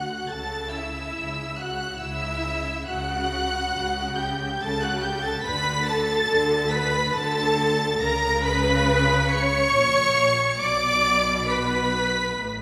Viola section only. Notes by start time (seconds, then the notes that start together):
Already playing: F#4
0.28 A4
0.72 E4
1.59 F#4
2.00 E4
2.85 F#4
4.18 G4
4.60 A4
4.82 F#4
5.02 G4
5.23 A4
5.44 B4
5.86 A4
6.72 B4
7.16 A4
8.01 A#4
8.44 B4
9.32 C#5
10.60 D5
11.48 B4